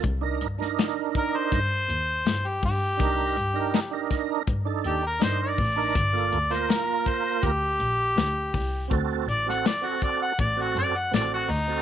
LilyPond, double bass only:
\new Staff \with { instrumentName = "Double bass" } { \clef bass \time 4/4 \key c \dorian \tempo 4 = 81 c,16 c,16 g,8 r4 g,16 r16 ees,16 r16 g,16 r16 g,8 | c,16 c,16 g,8 r4 g,16 r16 ees,16 r16 g,16 r16 a,,8 | g,,16 g,,16 d,8 r4 d,16 r16 bes,,16 r16 d,16 r16 c,8 | d,16 d,16 a,,8 r4 a,,16 r16 fis,16 r16 a,,16 r16 d,8 | }